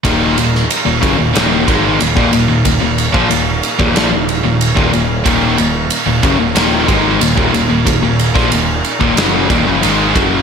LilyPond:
<<
  \new Staff \with { instrumentName = "Tonewheel organ" } { \time 4/4 \key ees \minor \tempo 4 = 92 <ees' bes' f''>1~ | <ees' bes' f''>1~ | <ees' bes' f''>1~ | <ees' bes' f''>1 | }
  \new Staff \with { instrumentName = "Distorted electric guitar" } { \clef bass \time 4/4 \key ees \minor <ees, bes, ees>8 <ees, bes,>8 r16 <ees, bes,>16 <ges, des>16 <ees, bes,>16 <ees, bes, ees>8 <aes, ees aes>8 <ees, bes,>16 <ees, bes,>16 <ees, bes,>16 <ees, bes,>16 | <ees, bes,>16 <ees, bes,>8 <bes, f>16 <ees, bes,>8 r16 <ees, bes,>16 <bes, f>16 <ees, bes,>8 <ees, bes,>8 <ees, bes,>16 <ees, bes,>8 | <ees, bes, ees>8 <ees, bes,>8 r16 <ees, bes,>16 <ges, des>16 <ees, bes,>16 <ees, bes, ees>8 <aes, ees aes>8 <ees, bes,>16 <ees, bes,>16 <ees, bes,>16 <ees, bes,>16 | <ees, bes,>16 <ees, bes,>8 <bes, f>16 <ees, bes,>8 r16 <ees, bes,>16 <ges, des ges>8 <ees, bes,>16 <ges, des>16 <aes, ees aes>8 <ges, des ges>8 | }
  \new Staff \with { instrumentName = "Overdriven electric guitar" } { \clef bass \time 4/4 \key ees \minor <ees, bes, ees>8 <ees, bes,>8 r16 <ees, bes,>16 <ges, des>16 <ees, bes,>16 <ees, bes, ees>8 <aes, ees aes>8 <ees, bes,>16 <ees, bes,>16 <ees, bes,>16 <ees, bes,>16 | <ees, bes,>16 <ees, bes,>8 <bes, f>16 <ees, bes,>8 r16 <ees, bes,>16 <bes, f>16 <ees, bes,>8 <ees, bes,>8 <ees, bes,>16 <ees, bes,>8 | <ees, bes, ees>8 <ees, bes,>8 r16 <ees, bes,>16 <ges, des>16 <ees, bes,>16 <ees, bes, ees>8 <aes, ees aes>8 <ees, bes,>16 <ees, bes,>16 <ees, bes,>16 <ees, bes,>16 | <ees, bes,>16 <ees, bes,>8 <bes, f>16 <ees, bes,>8 r16 <ees, bes,>16 <ges, des ges>8 <ees, bes,>16 <ges, des>16 <aes, ees aes>8 <ges, des ges>8 | }
  \new Staff \with { instrumentName = "Picked electric bass" } { \clef bass \time 4/4 \key ees \minor ees,,8 ees,,8 r16 ees,,16 ges,,16 ees,,16 ees,,8 aes,,8 ees,,16 ees,,16 ees,,16 ees,,16 | ees,,16 ees,,8 bes,,16 ees,,8 r16 ees,,16 bes,,16 ees,,8 ees,,8 ees,,16 ees,,8 | ees,,8 ees,,8 r16 ees,,16 ges,,16 ees,,16 ees,,8 aes,,8 ees,,16 ees,,16 ees,,16 ees,,16 | ees,,16 ees,,8 bes,,16 ees,,8 r16 ees,,16 ges,,8 ees,,16 ges,,16 aes,,8 ges,,8 | }
  \new DrumStaff \with { instrumentName = "Drums" } \drummode { \time 4/4 <bd cymr>8 cymr16 sn16 cymr8 <bd cymr>8 <cymr sn>8 <bd cymr>8 cymr16 bd16 cymr8 | <bd cymr>8 cymr16 bd16 cymr8 cymr16 bd16 <cymr sn>8 cymr8 cymr16 bd16 cymr8 | <bd cymr>8 cymr8 cymr8 <bd cymr>8 <cymr sn>8 <bd cymr>8 cymr16 bd16 cymr8 | <bd cymr>8 cymr16 <bd sn>16 cymr8 cymr16 bd16 <cymr sn>8 <bd cymr>8 cymr8 <bd cymr>8 | }
>>